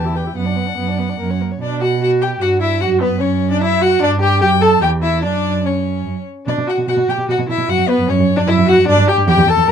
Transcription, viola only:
0.05 0.16 E4 medium
0.15 0.27 G4 medium
0.26 0.34 E4 medium
0.34 0.47 B3 medium
0.45 0.57 D4 medium
0.56 0.68 B3 medium
0.66 0.76 D4 medium
0.77 0.89 B3 medium
0.87 1.00 D4 medium
0.98 1.10 B3 medium
1.08 1.18 D4 medium
1.19 1.31 A#3 medium
1.30 1.42 C#4 medium
1.40 1.52 A#3 medium
1.51 1.61 C#4 medium
1.62 1.83 D4 medium
1.81 2.00 F#4 medium
2.01 2.23 F#4 medium
2.21 2.43 G4 medium
2.41 2.60 F#4 loud
2.61 2.69 E4 medium
2.81 3.03 F#4 loud
3.01 3.20 B3 medium
3.21 3.29 C#4 medium
3.52 3.63 D4 loud
3.62 3.83 E4 loud
3.81 4.01 F#4 loud
4.02 4.10 D4 loud
4.21 4.41 G4 loud
4.41 4.49 G4 loud
4.61 4.81 A4 loud
4.82 4.90 G4 loud
5.02 5.22 E4 loud
5.23 5.63 D4 loud
5.63 6.25 C#4 medium
6.47 6.69 D4 medium
6.68 6.87 F#4 medium
6.88 7.11 F#4 loud
7.09 7.29 G4 medium
7.29 7.37 F#4 medium
7.49 7.70 E4 medium
7.69 7.88 F#4 loud
7.89 8.10 B3 medium
8.09 8.40 C#4 loud
8.39 8.50 D4 loud
8.49 8.68 E4 loud
8.68 8.76 F#4 loud
8.89 9.10 D4 loud
9.08 9.28 G4 loud
9.29 9.37 G4 loud
9.49 9.70 A4 loud
9.68 9.72 A#4 loud

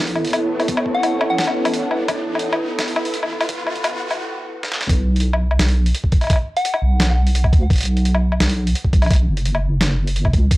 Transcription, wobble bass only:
0.00 0.32 A1 medium
1.21 1.90 A1 medium
1.91 2.07 C#2 loud
2.09 2.78 A1 loud
2.79 3.13 A1 loud
3.14 3.65 A1 medium
3.66 4.00 A1 loud
4.01 4.19 A1 loud
4.89 5.58 B1 loud
5.59 5.93 B1 loud
6.82 7.51 B1 loud
7.53 7.69 D2 medium
7.70 8.39 B1 loud
8.40 8.74 B1 loud
8.93 9.27 B1 loud
9.28 10.32 F#1 loud
10.33 10.50 C#2 loud
10.51 10.57 A1 loud

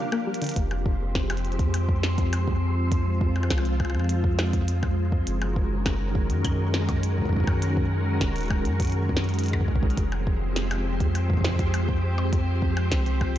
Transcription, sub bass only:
0.56 1.61 F1 loud
1.59 3.52 F2 medium
3.50 3.96 C2 medium
3.95 5.23 F2 medium
5.27 6.31 F#1 loud
6.30 8.23 F#2 medium
8.21 8.67 D#1 medium
8.65 9.70 F#2 medium
9.68 9.93 A#1 loud
9.97 11.02 F1 loud
11.00 12.93 F2 medium
12.92 13.37 C2 medium

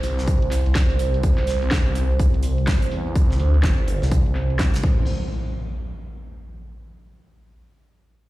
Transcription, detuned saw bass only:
0.03 0.40 C2 loud
0.42 0.64 C2 medium
0.66 0.88 C2 medium
0.90 1.22 C2 loud
1.24 1.70 C2 medium
1.72 2.18 C2 loud
2.20 2.66 C2 loud
2.68 2.90 C2 loud
2.92 3.14 E2 loud
3.16 3.38 C2 medium
3.40 3.62 D2 loud
3.64 3.76 G1 loud
3.78 4.00 G1 loud
4.02 4.24 C2 medium
4.26 4.58 C2 medium
4.60 4.82 C2 loud
4.84 5.06 A1 loud

